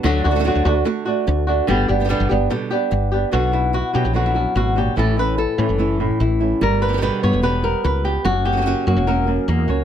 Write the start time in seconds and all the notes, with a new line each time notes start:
0.03 D2 D3 F#3 A3 D4 F#4, muted nylon-string guitar stroke
0.24 D2 A3 D4 F#4
0.31 D3 A3 D4 F#4
0.35 D3 A3 D4 F#4
0.39 D3 A3 D4 F#4
0.44 D3 F#3 A3 D4 F#4
0.55 D2
0.65 D2 A3 D4 F#4
0.85 D3 A3 D4 F#4, muted nylon-string guitar stroke
1.05 A3 D4 F#4
1.27 D2, muted nylon-string guitar stroke
1.47 A3 D4 F#4
1.67 G1 D3 G3 B3 D4 G4, muted nylon-string guitar stroke
1.88 G1 B3 D4 G4
2.00 D3 G3 B3 G4
2.04 D3 G3 B3 G4
2.09 B2 D3 G3 B3 D4 G4
2.20 G1
2.29 G1 G3 B3 D4 G4
2.50 B2 D3 G3 B3 G4, muted nylon-string guitar stroke
2.70 G3 B3 D4 G4
2.91 G1, muted nylon-string guitar stroke
3.12 B3 D4 G4
3.31 B1 B2 D3 B3 D4 F#4
3.52 B3 D4 E4 F#4
3.73 F#4, muted nylon-string guitar stroke
3.93 B2 F#3 B3 D4 F#4 G4
4.05 A#1
4.13 B2 D3 B3 D4 F#4
4.26 E4
4.34 F#2 B3 D4 F#4
4.55 G#1 B2 F#4, muted nylon-string guitar stroke
4.75 A#2 B3 D4 F#4 G4
4.96 A1 A2 E3 A3 C#4 E4 A4
5.17 A3 C#4 E4 B4
5.38 A4, muted nylon-string guitar stroke
5.58 A2 E3 A3 C#4 E4
5.69 F#1
5.78 E3 A3 C#4 E4
6.00 A2 A3 C#4 E4
6.20 A1 E4, muted nylon-string guitar stroke
6.40 A3 C#4 E4
6.61 G1 G3 A#4, muted nylon-string guitar stroke
6.81 G3 B3 G4 B4
6.88 D3 G3 B3 G4
6.93 D3 G3 B3 G4
6.97 D3 G3 B3 G4
7.02 B2 D3 G3 B3 G4 B4
7.23 G2 B3 C#5
7.33 E1
7.42 B2 D3 G3 B3 G4 B4
7.63 G3 B3 G4 A#4
7.84 C#2 B4, muted nylon-string guitar stroke
8.04 G3 B3 G4
8.24 F#1 F#2 F#4, muted nylon-string guitar stroke
8.45 A#3 C#4 F#4 G4
8.53 F#3 A#3 C#4 F#4
8.57 F#3 A#3 C#4 F#4
8.61 F#3 A#3 C#4 F#4
8.66 C#3 F#3 A#3 C#4 F#4
8.87 F#2 A#3 F#4
8.96 E1
9.07 C#3 F#3 A#3 C#4 F#4 A#4
9.27 F#2 A#3 C#4 F#4
9.48 E2 A#3, muted nylon-string guitar stroke
9.68 C#2 A#3 C#4 F#4 C#5